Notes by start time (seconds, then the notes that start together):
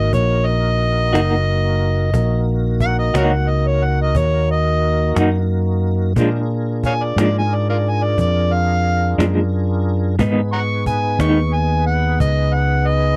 Already playing: A#3 D#4 F#4 A#4 D#5
0.13 A#1 C#5, cajon bass, cajon slap
0.47 D#5, cajon slap
0.81 cajon slap
1.13 F#1 D#3 A#3 D#4 F#4, cajon slap
1.47 cajon slap
1.81 cajon slap
2.13 A#1 A#3 D#4 F#4 A#4, cajon bass
2.48 cajon slap
2.80 F#5, cajon bass, cajon slap
2.99 D#5
3.14 C#2 D#3 A#3 D#4 F#4 A#4 C#5, cajon slap
3.34 F#5
3.47 D#5, cajon slap
3.67 C#5
3.82 F#5, cajon slap
4.02 D#5
4.15 D#2 C#5, cajon bass
4.49 D#5, cajon slap
4.83 cajon slap
5.15 F#2 D#3 A#3 D#4 F#4, cajon slap
5.50 cajon slap
5.84 cajon slap
6.16 A#2 F3 G#3 D4 F4 G#4 A#4, cajon bass
6.49 cajon slap
6.83 C#5 F5 G#5, cajon bass, cajon slap
7.05 D5
7.16 G#2 A#2 F3 G#3 D4, cajon slap
7.23 D5
7.39 G#5
7.52 D5, cajon slap
7.69 F4 A#4 D5
7.86 G#5, cajon slap
8.03 D5
8.18 F2 D5, cajon bass
8.51 F5, cajon slap
8.85 cajon slap
9.18 F#2 A#2 F3 G#3 D4, cajon slap
9.52 cajon slap
9.85 cajon slap
10.19 G#2 D#3 B3 D#4 G#4 B4, cajon bass
10.53 F#5 A#5 C#6
10.86 G#5, cajon bass
11.19 D#2 G#2 D#3 B3 D#4 C#6, cajon slap
11.53 G#5, cajon slap
11.87 F#5, cajon slap
12.20 C#2 D#5, cajon bass, cajon slap
12.53 F#5, cajon slap
12.87 D#5, cajon slap